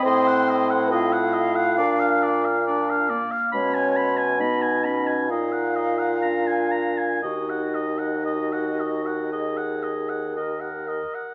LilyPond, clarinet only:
\new Staff \with { instrumentName = "Clarinet" } { \time 4/4 \key ees \minor \tempo 4 = 66 c'4. r8 d'4 d'8 bes8 | aes4 ces'8 des'8 ees'4 d'4 | ges'4 ges'4 aes'4 bes'4 | }